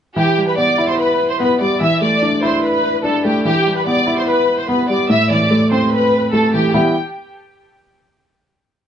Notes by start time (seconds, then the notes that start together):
0.16 E3 G4 G5
0.37 G3
0.47 B4 B5
0.58 B3 D5 D6
0.78 E4
0.89 C5 C6
0.99 B4 B5
1.30 C5 C6
1.40 B3 B4 B5
1.60 G3 D5 D6
1.81 E3 E5 E6
2.01 A3 D5 D6
2.22 D4
2.43 E4 C5 C6
2.63 B4 B5
3.04 D4 A4 A5
3.25 A3 G4 G5
3.45 E3 G4 G5
3.66 G3
3.76 B4 B5
3.87 B3 D5 D6
4.07 E4
4.17 C5 C6
4.28 B4 B5
4.58 C5 C6
4.69 B3 B4 B5
4.89 G3 D5 D6
5.10 A2 E5 E6
5.30 E3 D5 D6
5.51 A3
5.71 C4 C5 C6
5.92 B4 B5
6.33 A3 A4 A5
6.54 E3 G4 G5
6.74 E3 G3 B3 E4 G5